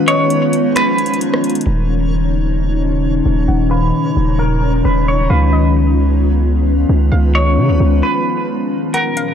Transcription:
0.00 1.63 D#3 medium
0.00 1.63 F3 medium
0.00 1.63 G#3 medium
0.00 1.63 B3 medium
0.00 1.63 C#4 medium
0.00 1.63 D#4 medium
0.00 1.63 F4 medium
0.00 1.65 C#5 medium
0.00 1.21 F5 medium
0.08 0.72 C#5 medium
0.08 1.44 D#5 medium
0.08 closed hi-hat medium
0.30 closed hi-hat medium
0.53 closed hi-hat medium
0.76 1.19 B4 medium
0.76 finger snap loud
0.76 closed hi-hat medium
0.98 closed hi-hat medium
1.06 closed hi-hat medium
1.14 closed hi-hat medium
1.21 closed hi-hat medium
1.34 cross-stick loud
1.44 closed hi-hat medium
1.50 closed hi-hat medium
1.55 closed hi-hat medium
1.61 closed hi-hat medium
1.67 3.22 D#1 loud
1.67 5.27 A#2 medium
1.67 5.27 C#3 medium
1.67 8.90 D#3 medium
1.67 3.47 F3 medium
1.67 5.27 F#3 medium
1.67 8.90 C#4 medium
1.67 3.47 D#4 medium
1.67 2.09 A#4 medium
1.67 5.27 C#5 medium
1.67 3.03 F#5 loud
1.90 3.26 F5 medium
3.26 3.48 D#1 loud
3.48 3.92 D#1 loud
3.48 8.90 D#4 medium
3.48 5.29 D#4 medium
3.48 4.85 F#5 medium
3.71 4.35 B4 medium
3.71 5.07 F5 medium
4.17 4.82 D#1 medium
4.39 4.82 A#4 medium
4.85 5.28 D#1 loud
4.85 5.06 B4 medium
5.08 5.30 C#5 medium
5.30 6.85 C#2 loud
5.30 8.90 F3 medium
5.30 8.90 G#3 medium
5.30 8.90 B3 medium
5.30 8.90 F4 medium
5.30 5.73 B4 medium
5.30 8.90 B4 medium
5.30 6.66 F5 loud
5.53 6.89 D#5 medium
6.89 7.11 C#2 loud
7.12 7.59 C#2 loud
7.12 8.48 F5 medium
7.35 7.99 C#5 medium
7.35 8.71 D#5 medium
7.57 7.70 C#3 loud
7.69 7.80 C#2 loud
7.80 8.02 C#2 loud
8.03 8.46 B4 medium
8.94 9.34 A#2 medium
8.94 9.34 D#3 medium
8.94 9.34 F3 medium
8.94 9.34 F#3 medium
8.94 9.34 C#4 medium
8.94 9.34 A#4 loud
8.94 9.34 F#5 loud
8.94 closed hi-hat medium
9.17 9.34 F5 medium
9.17 closed hi-hat medium

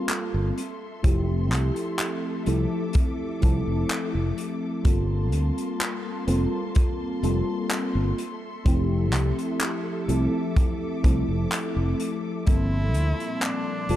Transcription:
0.00 0.58 G3 medium
0.00 0.53 A#3 medium
0.00 0.58 A#3 medium
0.00 0.58 C4 medium
0.00 0.59 F4 medium
0.00 0.59 A4 medium
0.00 0.53 F5 medium
0.00 0.53 A5 medium
0.00 0.53 C6 medium
0.09 clap loud
0.09 closed hi-hat medium
0.34 0.50 G1 medium
0.57 4.82 A4 medium
0.57 4.81 E5 medium
0.57 2.45 C6 medium
0.57 closed hi-hat medium
1.03 1.52 F1 medium
1.03 2.41 F3 medium
1.03 2.41 A3 medium
1.03 2.42 C4 medium
1.03 2.42 E4 medium
1.03 2.42 G4 medium
1.03 kick loud
1.03 closed hi-hat medium
1.52 1.70 C2 medium
1.52 clap medium
1.52 closed hi-hat medium
1.76 closed hi-hat soft
1.99 clap loud
1.99 closed hi-hat medium
2.46 2.65 C2 medium
2.46 2.71 F3 medium
2.46 2.71 A3 medium
2.46 2.72 C4 medium
2.46 2.72 E4 medium
2.46 2.72 A4 medium
2.46 4.83 D6 medium
2.46 closed hi-hat medium
2.93 kick loud
2.93 closed hi-hat medium
3.41 3.60 C2 medium
3.41 4.79 F3 medium
3.41 4.80 A3 medium
3.41 4.80 C4 medium
3.41 4.80 E4 medium
3.41 4.81 A4 loud
3.41 kick loud
3.41 closed hi-hat medium
3.67 3.83 F1 medium
3.89 clap loud
3.89 closed hi-hat medium
4.15 4.31 F1 medium
4.38 closed hi-hat medium
4.84 5.32 G1 medium
4.84 6.22 G3 medium
4.84 6.22 A#3 medium
4.84 8.15 A#3 medium
4.84 6.23 C4 medium
4.84 6.23 F4 medium
4.84 6.23 A4 medium
4.84 8.15 A5 medium
4.84 10.05 C6 medium
4.84 kick loud
4.84 closed hi-hat medium
5.32 5.50 D2 loud
5.32 closed hi-hat medium
5.58 closed hi-hat medium
5.81 clap loud
5.81 closed hi-hat medium
6.27 6.45 F1 medium
6.27 6.43 G3 medium
6.27 6.43 A#3 medium
6.27 6.43 C4 medium
6.27 6.43 F4 medium
6.27 6.44 A4 medium
6.27 closed hi-hat medium
6.75 kick loud
6.75 closed hi-hat medium
7.23 7.41 F1 medium
7.23 8.16 G3 medium
7.23 8.16 A#3 medium
7.23 8.16 C4 medium
7.23 8.16 F4 medium
7.23 8.16 A4 medium
7.23 closed hi-hat medium
7.70 clap loud
7.70 closed hi-hat medium
7.95 8.11 G1 medium
8.18 12.43 A4 medium
8.18 12.43 E5 medium
8.18 closed hi-hat medium
8.65 9.13 F1 medium
8.65 10.03 F3 medium
8.65 10.03 A3 medium
8.65 10.04 C4 medium
8.65 10.04 E4 medium
8.65 10.04 G4 medium
8.65 kick loud
8.65 closed hi-hat medium
9.13 9.31 C2 medium
9.13 clap medium
9.13 closed hi-hat medium
9.39 closed hi-hat medium
9.60 clap loud
9.60 closed hi-hat medium
10.08 10.26 C2 medium
10.08 10.33 F3 medium
10.08 10.33 A3 medium
10.08 10.34 C4 medium
10.08 10.34 E4 medium
10.08 10.34 A4 medium
10.08 12.45 D6 medium
10.08 closed hi-hat medium
10.56 kick loud
10.56 closed hi-hat medium
11.03 11.22 C2 medium
11.03 12.41 F3 medium
11.03 12.42 A3 medium
11.03 12.42 C4 medium
11.03 12.42 E4 medium
11.03 12.43 A4 medium
11.03 kick loud
11.03 closed hi-hat medium
11.28 11.45 F1 medium
11.52 clap loud
11.52 closed hi-hat medium
11.76 11.93 F1 medium
12.00 closed hi-hat medium
12.46 12.94 G1 medium
12.46 13.96 A#2 medium
12.46 13.85 F3 medium
12.46 13.84 G3 medium
12.46 13.84 A#3 medium
12.46 13.85 C4 medium
12.46 13.43 E4 loud
12.46 13.86 A4 medium
12.46 13.96 A5 medium
12.46 13.96 C6 medium
12.46 kick loud
12.46 closed hi-hat medium
12.94 13.12 D2 medium
12.94 closed hi-hat medium
13.20 closed hi-hat soft
13.42 13.96 D4 loud
13.42 clap loud
13.42 closed hi-hat medium
13.89 13.96 F1 medium
13.89 13.96 G3 medium
13.89 13.96 A#3 medium
13.89 13.96 C4 medium
13.89 13.96 F4 medium
13.89 13.96 A4 medium
13.89 closed hi-hat medium

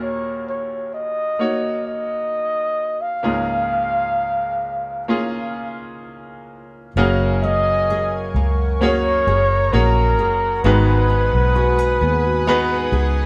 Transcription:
0.00 3.20 D#2 soft
0.00 3.20 A#2 soft
0.00 1.31 A#3 medium
0.00 1.31 D#4 medium
0.00 1.31 F#4 soft
0.00 3.24 G#4 soft
0.00 1.32 A#4 medium
0.00 0.45 C#5 medium
0.00 3.25 E5 soft
0.48 0.91 C#5 medium
0.94 1.82 D#5 medium
1.39 3.14 A#3 medium
1.39 3.14 D#4 medium
1.39 3.14 F#4 medium
1.39 3.15 C#5 medium
1.87 3.03 D#5 medium
3.01 5.79 F5 medium
3.23 6.93 C#2 medium
3.23 6.93 G#2 soft
3.23 4.99 A#3 medium
3.23 4.99 C#4 medium
3.23 5.00 F4 medium
3.23 5.00 G#4 medium
5.08 6.87 A#3 medium
5.08 6.87 C#4 medium
5.08 6.87 F4 medium
5.08 6.88 G#4 medium
6.96 8.31 F#1 loud
6.96 10.64 F#2 medium
6.96 8.32 C#3 medium
6.96 8.72 A#3 medium
6.96 8.72 C#4 medium
6.96 8.72 F#4 medium
6.96 8.73 G#4 medium
6.96 10.61 A#4 medium
6.96 8.73 A#4 medium
6.96 13.26 F#5 medium
6.96 8.79 G#5 medium
6.96 10.61 C#6 medium
7.43 8.81 C#4 medium
7.43 8.31 D#5 loud
7.90 9.27 G#4 medium
8.34 9.23 C#2 medium
8.34 10.74 A#3 medium
8.80 9.68 A#3 medium
8.80 9.68 C#4 medium
8.80 9.72 C#4 medium
8.80 9.69 F#4 medium
8.80 9.69 G#4 medium
8.80 9.74 C#5 loud
8.80 9.69 C#5 medium
8.80 10.63 A#5 medium
9.27 9.70 F#1 medium
9.27 10.18 G#4 medium
9.72 10.19 A#1 medium
9.72 10.60 A#3 medium
9.72 10.60 C#4 medium
9.72 10.74 C#4 medium
9.72 10.60 F#4 medium
9.72 10.60 G#4 medium
9.72 10.65 A#4 medium
9.72 10.61 C#5 medium
10.19 10.61 F#1 loud
10.19 11.55 G#4 medium
10.63 11.29 G#1 loud
10.63 13.26 G#2 medium
10.63 11.98 G#2 medium
10.63 11.98 D#3 medium
10.63 12.38 B3 medium
10.63 12.39 D#4 medium
10.63 12.39 F#4 medium
10.63 12.39 G#4 medium
10.63 13.26 B4 loud
10.63 13.26 B4 medium
10.63 12.39 B4 medium
10.63 13.26 G#5 medium
10.63 13.26 D#6 medium
11.10 12.46 D#4 medium
11.33 11.98 B1 medium
11.56 11.79 F#4 medium
11.56 11.99 F#4 loud
11.79 12.92 G#4 medium
12.01 12.89 D#2 medium
12.01 13.26 B3 medium
12.01 12.25 G#4 medium
12.24 12.47 F#4 medium
12.47 13.26 B3 medium
12.47 13.26 D#4 medium
12.47 13.26 F#4 medium
12.47 13.26 G#4 loud
12.47 13.26 G#4 medium
12.47 13.26 B4 loud
12.92 13.26 C#2 loud
12.92 13.26 G#4 medium

